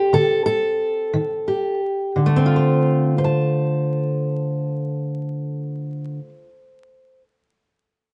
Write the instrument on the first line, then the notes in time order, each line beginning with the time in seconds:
steel-string acoustic guitar
Already playing: C4 G4
0.13 D3 A4
0.46 A4
1.13 D#3
1.48 G4
2.16 D3
2.26 A3
2.36 C4
2.46 F4
2.56 C5
3.18 C5
3.24 A5